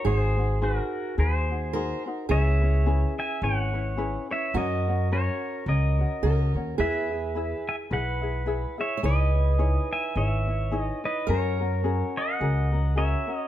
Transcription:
Already playing: steel-string acoustic guitar F#4
0.05 upright bass G#1, ukulele D#4 F#4 G#4 C5, steel-string acoustic guitar G#4, pedal steel guitar G#4 C#5
0.18 pedal steel guitar C5
0.37 ukulele D#4 F#4 C5
0.61 ukulele D#4 F#4 G#4 C5, pedal steel guitar F#4 A#4
1.18 upright bass D#2, ukulele D#4 F#4 G#4 C5, pedal steel guitar G#4 C5
1.50 ukulele D#4 F#4 C5
1.73 ukulele D#4 F#4 G#4 C5, steel-string acoustic guitar A#4
2.06 ukulele D#4 F#4 C5
2.29 upright bass C#2, ukulele C#4 E4 G#4 B4, steel-string acoustic guitar G#4, pedal steel guitar C#5 E5
2.62 ukulele C#4 E4 B4
2.86 ukulele C#4 E4 G#4 B4
3.19 pedal steel guitar E5 G#5
3.42 upright bass G#1, ukulele C#4 E4 G#4 B4, pedal steel guitar C#5 F#5
3.73 ukulele C#4 E4 B4
3.97 ukulele C#4 E4 G#4 B4
4.30 ukulele C#4 E4 B4, pedal steel guitar C#5 E5
4.54 upright bass F#2, ukulele C#4 F#4 A#4 C#5, steel-string acoustic guitar F#4, pedal steel guitar A#4 D#5
4.88 ukulele C#4 F#4 C#5
5.12 ukulele C#4 F#4 A#4 C#5, pedal steel guitar A#4 C#5
5.66 upright bass C#2, ukulele C#4 F#4 A#4 C#5, pedal steel guitar A#4 D#5
5.99 ukulele C#4 F#4 C#5
6.22 upright bass C#2, ukulele C#4 F#4 A#4 C#5, steel-string acoustic guitar A#4
6.54 upright bass D#2, ukulele C#4 F#4 C#5
6.78 upright bass E2, ukulele E4 G#4 B4 E5, steel-string acoustic guitar G#4, pedal steel guitar B4 E5
7.11 ukulele E4 G#4 E5
7.35 ukulele E4 G#4 B4 E5
7.69 pedal steel guitar E5 G#5
7.90 upright bass B1, ukulele E4 G#4 B4 E5, pedal steel guitar B4 F#5
8.21 ukulele E4 G#4 E5
8.46 ukulele E4 G#4 B4 E5
8.78 ukulele E4 G#4 E5, pedal steel guitar C#5 E5
8.97 steel-string acoustic guitar C#5
9.03 upright bass C#2, ukulele D#4 E4 G#4 C#5, pedal steel guitar G#4 D#5, steel-string acoustic guitar B4
9.33 ukulele D#4 E4 C#5
9.58 ukulele D#4 E4 G#4 C#5
9.93 pedal steel guitar E5 G#5
10.16 upright bass G#1, ukulele D#4 E4 G#4 C#5, pedal steel guitar C#5 E5
10.47 ukulele D#4 E4 C#5
10.71 ukulele D#4 E4 G#4 C#5
10.78 pedal steel guitar D#5
11.04 ukulele D#4 E4 C#5, pedal steel guitar B4 D#5
11.27 upright bass F#2, ukulele C#4 F#4 G#4 A#4, steel-string acoustic guitar A#4, pedal steel guitar A#4 C#5
11.60 ukulele C#4 F#4 A#4
11.84 ukulele C#4 F#4 G#4 A#4
12.17 pedal steel guitar D#5 F#5
12.40 upright bass C#2, ukulele C#4 F#4 G#4 A#4
12.72 ukulele C#4 F#4 A#4
12.96 ukulele C#4 F#4 G#4 A#4, pedal steel guitar C#5 E5
13.27 ukulele C#4 F#4 A#4
13.35 pedal steel guitar D#5

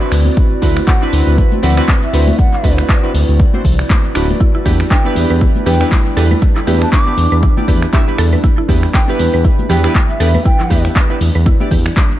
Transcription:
Already playing: ambient pad C4 E4 F#4 B4 D5
0.00 synth keys C4 D4 E4 F#4 B4, shaker
0.12 analog synth bass D2, finger snap, open hi-hat, shaker
0.25 high conga, shaker
0.37 kick, shaker
0.62 analog synth bass D2, synth keys C4 D4 E4 F#4 B4, kick, open hi-hat, high conga, shaker
0.77 finger snap, shaker
0.87 flute F#5, kick, clap, shaker
1.01 synth keys C4 D4 E4 F#4 B4, shaker
1.13 analog synth bass D2, open hi-hat, high conga, shaker
1.27 analog synth bass D2, shaker
1.38 kick, shaker
1.52 high conga, shaker
1.63 analog synth bass D2, synth keys C4 D4 E4 F#4 B4, flute F#5, open hi-hat, low conga, shaker
1.77 synth keys C4 D4 E4 F#4 B4, finger snap, shaker
1.88 kick, clap, high conga, shaker
2.03 flute E5, shaker
2.13 analog synth bass D2, synth keys C4 D4 E4 F#4 B4, open hi-hat, shaker
2.28 high conga, shaker
2.39 flute F#5, kick, shaker
2.53 clap, shaker
2.63 analog synth bass D2, synth keys C4 D4 E4 F#4 B4, kick, open hi-hat, high conga, shaker
2.78 finger snap, shaker
2.89 kick, clap, shaker
3.03 synth keys C4 D4 E4 F#4 B4, shaker
3.14 analog synth bass D2, open hi-hat, high conga, shaker
3.29 analog synth bass D2, shaker
3.40 kick, shaker
3.53 synth keys C4 D4 E4 F#4 C5, high conga, shaker
3.64 analog synth bass C2, kick, open hi-hat, low conga, shaker
3.79 finger snap, shaker
3.90 kick, clap, high conga, shaker
4.04 shaker
4.15 analog synth bass D1, synth keys C4 D4 E4 F#4 B4, finger snap, open hi-hat, shaker
4.30 high conga, shaker
4.40 ambient pad G3 D4, synth arpeggio sound E4, kick, shaker
4.55 synth arpeggio sound E4
4.65 analog synth bass E2, synth keys B3 D4 E4 G4 B4, synth arpeggio sound G4, kick, open hi-hat, high conga, shaker
4.80 finger snap, shaker
4.91 synth arpeggio sound D4, flute G5, kick, clap, shaker
5.04 synth keys B3 D4 E4 G4 B4, shaker
5.15 analog synth bass E2, open hi-hat, high conga, shaker
5.30 analog synth bass E2, synth arpeggio sound B4, shaker
5.41 synth arpeggio sound E4, kick, shaker
5.56 high conga, shaker
5.66 analog synth bass E2, synth keys B3 D4 E4 G4 B4, synth arpeggio sound G4, flute G5, open hi-hat, low conga, shaker
5.80 synth keys B3 D4 E4 G4 B4, finger snap, shaker
5.91 kick, clap, high conga, shaker
6.06 shaker
6.16 analog synth bass E2, synth keys B3 D4 E4 G4 B4, synth arpeggio sound A4, open hi-hat, shaker
6.31 synth arpeggio sound B4, high conga, shaker
6.42 synth arpeggio sound E4, kick, shaker
6.56 synth arpeggio sound E4, clap, shaker
6.67 analog synth bass E2, synth keys B3 D4 E4 G4 B4, synth arpeggio sound G4, open hi-hat, high conga, shaker
6.82 flute A5, finger snap, shaker
6.92 synth arpeggio sound D4, flute D6, kick, clap, shaker
7.06 synth keys B3 D4 E4 G4 B4, shaker
7.18 analog synth bass E2, open hi-hat, high conga, shaker
7.32 analog synth bass E2, synth arpeggio sound B4, shaker
7.43 synth arpeggio sound E4, kick, shaker
7.57 synth keys B3 D4 E4 G4 D5, high conga, shaker
7.68 analog synth bass E2, synth keys B3 D4 E4 G4 B4, synth arpeggio sound G4, kick, open hi-hat, low conga, shaker
7.82 finger snap, shaker
7.93 synth keys B3 D4 E4 G4 E5, kick, clap, high conga, shaker
8.07 synth keys B3 D4 E4 G4 B4, shaker
8.18 analog synth bass E2, synth arpeggio sound A4, finger snap, open hi-hat, shaker
8.32 synth arpeggio sound B4, high conga, shaker
8.44 synth arpeggio sound E4, kick, shaker
8.58 synth arpeggio sound E4
8.68 analog synth bass E2, synth keys B3 D4 E4 G4 B4, synth arpeggio sound G4, kick, open hi-hat, high conga, shaker
8.83 finger snap, shaker
8.94 synth arpeggio sound D4, flute G5, kick, clap, shaker
9.07 synth keys B3 D4 E4 G4 B4, shaker
9.19 analog synth bass E2, open hi-hat, high conga, shaker
9.34 analog synth bass E2, synth arpeggio sound B4, shaker
9.44 synth arpeggio sound E4, kick, shaker
9.59 high conga, shaker
9.69 analog synth bass E2, synth keys B3 D4 E4 G4 B4, synth arpeggio sound G4, flute G5, open hi-hat, low conga, shaker
9.84 synth keys B3 D4 E4 G4 B4, finger snap, shaker
9.95 kick, clap, high conga, shaker
10.09 flute E5, shaker
10.20 analog synth bass E2, synth keys B3 D4 E4 G4 B4, synth arpeggio sound A4, open hi-hat, shaker
10.34 synth arpeggio sound B4, high conga, shaker
10.45 synth arpeggio sound E4, flute G5, kick, shaker
10.60 synth arpeggio sound E4, clap, low conga, shaker
10.70 analog synth bass E2, synth keys B3 D4 E4 G4 B4, synth arpeggio sound G4, kick, open hi-hat, high conga, shaker
10.85 finger snap, shaker
10.96 synth arpeggio sound D4, kick, clap, shaker
11.10 synth keys B3 D4 E4 G4 B4, shaker
11.21 analog synth bass E2, open hi-hat, high conga, shaker
11.35 analog synth bass E2, synth arpeggio sound B4, shaker
11.46 synth arpeggio sound E4, kick, shaker
11.60 synth keys B3 D4 E4 G4 D5, high conga, shaker
11.71 analog synth bass E2, synth arpeggio sound G4, kick, open hi-hat, low conga, shaker
11.86 finger snap, shaker
11.97 kick, clap, high conga, shaker
12.11 shaker

